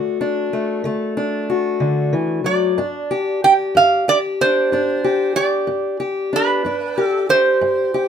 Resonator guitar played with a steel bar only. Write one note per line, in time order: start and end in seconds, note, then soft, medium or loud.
2.46 3.39 D5 medium
3.44 3.53 G5 medium
3.77 4.09 F5 medium
4.09 4.17 D5 medium
4.41 5.40 C5 medium
5.36 5.96 D5 medium
6.36 7.05 B4 medium
7.05 7.30 A4 medium
7.30 8.08 C5 medium